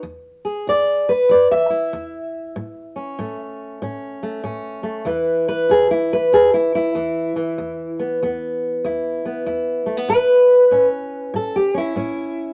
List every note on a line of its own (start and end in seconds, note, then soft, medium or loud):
0.03 0.62 E2 medium
0.45 1.09 G#4 soft
0.67 1.25 E2 medium
0.67 1.10 D5 medium
1.09 1.30 B4 medium
1.29 1.88 E2 medium
1.29 1.51 D5 medium
1.51 3.40 E5 loud
1.70 3.19 E4 soft
1.93 2.51 E2 medium
2.56 3.14 A2 medium
2.96 3.82 C#4 soft
3.19 3.77 A2 medium
3.19 4.22 A3 soft
3.82 4.40 A2 medium
3.82 4.43 C#4 medium
4.23 4.82 A3 soft
4.44 5.02 A2 medium
4.44 5.06 C#4 medium
4.83 5.07 A3 soft
5.05 5.64 E2 medium
5.05 6.95 E3 soft
5.05 5.71 E4 medium
5.05 5.48 B4 medium
5.48 5.70 B4 loud
5.69 6.28 E2 medium
5.69 5.90 G#4 medium
5.91 6.12 E4 medium
6.13 6.33 B4 medium
6.33 6.91 E2 medium
6.33 6.53 G#4 medium
6.54 6.74 E4 medium
6.75 8.00 E4 medium
6.95 7.53 E2 medium
6.95 7.36 E3 soft
7.36 10.86 E3 soft
7.58 8.16 E2 medium
8.00 8.22 B3 soft
8.22 8.80 E2 medium
8.22 9.24 B3 soft
8.84 9.42 E2 medium
8.84 9.47 E4 medium
9.25 9.86 B3 soft
9.46 10.04 E2 medium
9.46 11.55 E4 medium
9.86 9.97 A3 soft
9.97 10.09 B3 soft
10.08 10.67 A2 medium
10.08 11.34 B4 loud
10.71 11.29 A2 medium
10.71 11.73 C#4 medium
11.34 11.92 A2 medium
11.34 11.56 A4 medium
11.56 11.76 G4 medium
11.74 11.96 C#4 soft
11.74 12.53 E4 medium
11.96 12.53 A2 medium
11.96 12.53 C#4 soft